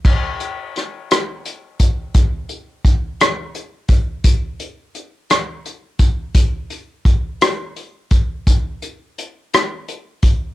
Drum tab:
CC |x-----|------|------|------|
HH |-xxxxx|xxxxxx|xxxxxx|xxxxxx|
SD |--rr--|---r--|---r--|---r--|
BD |o----o|o-o--o|o----o|o-o--o|

CC |------|
HH |xxxxxx|
SD |---r--|
BD |o----o|